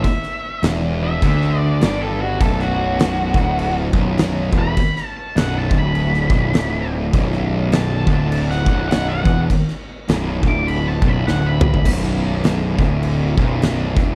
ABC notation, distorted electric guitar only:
X:1
M:4/4
L:1/8
Q:"Swing" 1/4=102
K:Bm
V:1 name="Distorted electric guitar" clef=bass
z2 E,,2 D,2 G,,2 | B,,,3 D,,2 B,,,2 E,, | z2 B,,, D,,2 B,,, D,,2 | B,,,3 D,,2 B,,,2 E,, |
z2 B,,, D,,2 B,,, D,,2 | B,,,3 D,,2 B,,,2 E,, |]